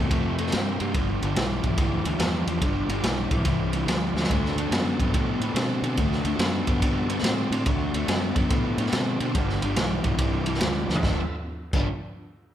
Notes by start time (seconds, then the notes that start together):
Already playing: A#3 E4 G4 C5
0.11 F2 C3 A3, kick, ride
0.38 C3 A3, ride
0.47 snare
0.52 G2 C3 A#3, snare, ride
0.79 G2 C3 A#3, ride
0.94 G1 G2 D3 C4 F#4 G#4 D#5, kick, ride
1.09 B3 F4 G4 D5
1.21 G1 G2 D3, ride
1.36 B1 G2 E3, snare, ride
1.63 B1 G2 E3, kick, ride
1.77 D2 G2 E3, kick, ride
2.05 D2 G2 E3, ride
2.19 E2 G2 F3, snare, ride
2.47 E2 G2 F3, ride
2.61 G1 G2 D3, kick, ride
2.89 G1 G2 D3, ride
3.02 B1 G2 E3, snare, ride
3.31 B1 G2 E3, kick, ride
3.45 C2 G2 E3, kick, ride
3.73 G2 E3, ride
3.86 D2 G2 F3, snare, ride
4.14 D2 G2 F3, snare
4.24 snare
4.30 D2 D3 A3 C4 F#4 A4 D5, kick, ride
4.45 snare
4.56 D2 D3 A3, ride
4.71 F#2 D3 B3, snare, ride
5.00 F#2 D3 B3, kick, ride
5.14 A2 D3 B3, kick, ride
5.40 A2 D3 B3, ride
5.54 B2 D3 C4, snare, ride
5.82 B2 D3 C4, ride
5.97 D2 D3 A3, kick, ride
6.12 snare
6.25 D2 D3 A3, ride
6.39 F#2 D3 B3, snare, ride
6.67 F#2 D3 B3, kick, ride
6.82 G2 D3 B3, kick, ride
7.09 D3 B3, ride
7.18 snare
7.23 A2 D3 C4, snare, ride
7.51 A2 D3 C4, ride
7.66 D2 D3 A3 C4 F#4 A4 D5, kick, ride
7.93 D2 D3 A3, ride
8.08 F#2 D3 B3, snare, ride
8.36 F#2 D3 B3, kick, ride
8.50 A2 D3 B3, kick, ride
8.77 A2 D3 B3, ride
8.86 snare
8.92 B2 D3 C4, snare, ride
9.20 B2 D3 C4, ride
9.35 G1 G2 D3 B3 F4 G4 D5, kick, ride
9.49 snare
9.62 G1 G2 D3, ride
9.76 B1 G2 E3, snare, ride
10.04 B1 G2 E3, kick, ride
10.19 C2 G2 E3, kick, ride
10.46 G2 E3, ride
10.54 snare
10.61 D2 G2 F3, snare, ride
10.89 D2 G2 F3, snare
10.96 floor tom
11.02 G1 G2 D3 F3 B3 D4 F4 A4 E5, kick, snare
11.73 G1 G2 D3 F3 B3 D4, kick, crash